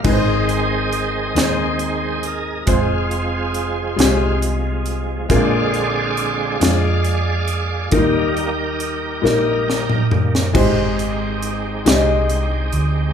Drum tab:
CC |x-----------|------------|------------|------------|
HH |--x-x-x-x-x-|x-x-x-x-x-x-|x-x-x-x-x-x-|x-x-x-------|
SD |------o-----|------o-----|------o-----|------o-o--o|
T2 |------------|------------|------------|---------o--|
FT |------------|------------|------------|----------o-|
BD |o-----------|o-----------|o-----------|o-----------|

CC |x-----------|
HH |--x-x-x-x-x-|
SD |------o-----|
T2 |------------|
FT |------------|
BD |o-----------|